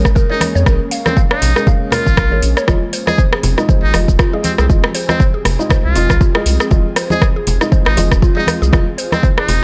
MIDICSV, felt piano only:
0, 0, Header, 1, 2, 480
1, 0, Start_track
1, 0, Key_signature, -4, "minor"
1, 0, Tempo, 504202
1, 632, Time_signature, 4, 2, 24, 8
1, 9175, End_track
2, 0, Start_track
2, 0, Title_t, "Felt piano"
2, 0, Program_c, 0, 0
2, 291, Note_on_c, 0, 61, 75
2, 291, Note_on_c, 0, 70, 91
2, 292, Note_on_c, 0, 56, 83
2, 609, Note_off_c, 0, 56, 0
2, 609, Note_off_c, 0, 61, 0
2, 609, Note_off_c, 0, 70, 0
2, 630, Note_on_c, 0, 61, 75
2, 631, Note_on_c, 0, 56, 82
2, 632, Note_on_c, 0, 70, 92
2, 751, Note_off_c, 0, 56, 0
2, 751, Note_off_c, 0, 61, 0
2, 752, Note_off_c, 0, 70, 0
2, 1006, Note_on_c, 0, 56, 83
2, 1007, Note_on_c, 0, 61, 76
2, 1007, Note_on_c, 0, 70, 92
2, 1064, Note_off_c, 0, 56, 0
2, 1065, Note_off_c, 0, 61, 0
2, 1065, Note_off_c, 0, 70, 0
2, 1483, Note_on_c, 0, 61, 72
2, 1484, Note_on_c, 0, 56, 78
2, 1484, Note_on_c, 0, 70, 84
2, 1804, Note_off_c, 0, 61, 0
2, 1805, Note_off_c, 0, 56, 0
2, 1805, Note_off_c, 0, 70, 0
2, 1829, Note_on_c, 0, 56, 81
2, 1831, Note_on_c, 0, 61, 76
2, 1831, Note_on_c, 0, 70, 91
2, 1950, Note_off_c, 0, 56, 0
2, 1951, Note_off_c, 0, 61, 0
2, 1951, Note_off_c, 0, 70, 0
2, 2206, Note_on_c, 0, 70, 91
2, 2207, Note_on_c, 0, 56, 81
2, 2207, Note_on_c, 0, 61, 74
2, 2526, Note_off_c, 0, 61, 0
2, 2526, Note_off_c, 0, 70, 0
2, 2527, Note_off_c, 0, 56, 0
2, 2546, Note_on_c, 0, 56, 84
2, 2547, Note_on_c, 0, 65, 74
2, 2547, Note_on_c, 0, 75, 86
2, 2669, Note_off_c, 0, 56, 0
2, 2669, Note_off_c, 0, 65, 0
2, 2669, Note_off_c, 0, 75, 0
2, 2922, Note_on_c, 0, 75, 95
2, 2923, Note_on_c, 0, 56, 85
2, 2923, Note_on_c, 0, 65, 76
2, 2982, Note_off_c, 0, 75, 0
2, 2983, Note_off_c, 0, 56, 0
2, 2983, Note_off_c, 0, 65, 0
2, 3406, Note_on_c, 0, 56, 78
2, 3406, Note_on_c, 0, 65, 73
2, 3406, Note_on_c, 0, 75, 83
2, 3726, Note_off_c, 0, 56, 0
2, 3726, Note_off_c, 0, 65, 0
2, 3726, Note_off_c, 0, 75, 0
2, 3749, Note_on_c, 0, 56, 82
2, 3749, Note_on_c, 0, 75, 95
2, 3750, Note_on_c, 0, 65, 73
2, 3870, Note_off_c, 0, 56, 0
2, 3870, Note_off_c, 0, 75, 0
2, 3871, Note_off_c, 0, 65, 0
2, 4126, Note_on_c, 0, 56, 81
2, 4126, Note_on_c, 0, 75, 90
2, 4128, Note_on_c, 0, 65, 74
2, 4446, Note_off_c, 0, 56, 0
2, 4446, Note_off_c, 0, 75, 0
2, 4447, Note_off_c, 0, 65, 0
2, 4470, Note_on_c, 0, 56, 83
2, 4471, Note_on_c, 0, 75, 87
2, 4472, Note_on_c, 0, 65, 73
2, 4591, Note_off_c, 0, 56, 0
2, 4591, Note_off_c, 0, 65, 0
2, 4591, Note_off_c, 0, 75, 0
2, 4845, Note_on_c, 0, 56, 82
2, 4845, Note_on_c, 0, 65, 74
2, 4845, Note_on_c, 0, 75, 90
2, 4904, Note_off_c, 0, 56, 0
2, 4904, Note_off_c, 0, 65, 0
2, 4904, Note_off_c, 0, 75, 0
2, 5325, Note_on_c, 0, 75, 87
2, 5326, Note_on_c, 0, 56, 79
2, 5326, Note_on_c, 0, 65, 71
2, 5645, Note_off_c, 0, 75, 0
2, 5646, Note_off_c, 0, 56, 0
2, 5646, Note_off_c, 0, 65, 0
2, 5669, Note_on_c, 0, 75, 93
2, 5671, Note_on_c, 0, 56, 84
2, 5671, Note_on_c, 0, 65, 79
2, 5790, Note_off_c, 0, 75, 0
2, 5791, Note_off_c, 0, 56, 0
2, 5791, Note_off_c, 0, 65, 0
2, 6046, Note_on_c, 0, 56, 81
2, 6046, Note_on_c, 0, 75, 91
2, 6047, Note_on_c, 0, 65, 77
2, 6366, Note_off_c, 0, 56, 0
2, 6366, Note_off_c, 0, 75, 0
2, 6367, Note_off_c, 0, 65, 0
2, 6389, Note_on_c, 0, 65, 75
2, 6391, Note_on_c, 0, 56, 84
2, 6391, Note_on_c, 0, 75, 89
2, 6510, Note_off_c, 0, 65, 0
2, 6511, Note_off_c, 0, 56, 0
2, 6511, Note_off_c, 0, 75, 0
2, 6764, Note_on_c, 0, 56, 85
2, 6764, Note_on_c, 0, 65, 75
2, 6764, Note_on_c, 0, 75, 94
2, 6823, Note_off_c, 0, 65, 0
2, 6823, Note_off_c, 0, 75, 0
2, 6824, Note_off_c, 0, 56, 0
2, 7244, Note_on_c, 0, 65, 72
2, 7245, Note_on_c, 0, 56, 82
2, 7246, Note_on_c, 0, 75, 86
2, 7565, Note_off_c, 0, 56, 0
2, 7565, Note_off_c, 0, 65, 0
2, 7566, Note_off_c, 0, 75, 0
2, 7588, Note_on_c, 0, 56, 88
2, 7588, Note_on_c, 0, 65, 75
2, 7589, Note_on_c, 0, 75, 95
2, 7710, Note_off_c, 0, 56, 0
2, 7710, Note_off_c, 0, 65, 0
2, 7710, Note_off_c, 0, 75, 0
2, 7964, Note_on_c, 0, 65, 77
2, 7967, Note_on_c, 0, 56, 85
2, 7967, Note_on_c, 0, 75, 94
2, 8285, Note_off_c, 0, 65, 0
2, 8286, Note_off_c, 0, 56, 0
2, 8286, Note_off_c, 0, 75, 0
2, 8309, Note_on_c, 0, 65, 74
2, 8309, Note_on_c, 0, 75, 90
2, 8310, Note_on_c, 0, 56, 81
2, 8430, Note_off_c, 0, 65, 0
2, 8430, Note_off_c, 0, 75, 0
2, 8431, Note_off_c, 0, 56, 0
2, 8683, Note_on_c, 0, 65, 77
2, 8683, Note_on_c, 0, 75, 89
2, 8684, Note_on_c, 0, 56, 81
2, 8743, Note_off_c, 0, 65, 0
2, 8743, Note_off_c, 0, 75, 0
2, 8744, Note_off_c, 0, 56, 0
2, 9175, End_track
0, 0, End_of_file